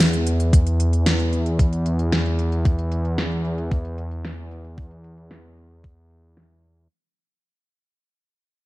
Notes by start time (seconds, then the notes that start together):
Already playing: E2
0.00 snare, closed hi-hat
0.13 closed hi-hat
0.27 closed hi-hat
0.40 closed hi-hat
0.53 kick, closed hi-hat
0.67 closed hi-hat
0.80 closed hi-hat
0.93 closed hi-hat
1.06 snare, closed hi-hat
1.20 closed hi-hat
1.33 closed hi-hat
1.46 closed hi-hat
1.59 kick, closed hi-hat
1.73 closed hi-hat
1.86 closed hi-hat
1.99 closed hi-hat
2.12 snare, closed hi-hat
2.26 closed hi-hat
2.39 closed hi-hat
2.52 closed hi-hat
2.65 kick, closed hi-hat
2.79 closed hi-hat
2.92 closed hi-hat
3.05 closed hi-hat
3.18 snare, closed hi-hat
3.32 closed hi-hat
3.45 closed hi-hat
3.58 closed hi-hat
3.71 kick, closed hi-hat
3.85 closed hi-hat
3.98 closed hi-hat
4.11 closed hi-hat
4.25 snare, closed hi-hat
4.38 closed hi-hat
4.51 closed hi-hat
4.65 closed hi-hat
4.78 kick, closed hi-hat
4.91 closed hi-hat
5.04 closed hi-hat
5.18 closed hi-hat
5.31 snare, closed hi-hat
5.44 closed hi-hat
5.58 closed hi-hat
5.71 closed hi-hat
5.84 kick, closed hi-hat
5.97 closed hi-hat
6.11 closed hi-hat
6.37 snare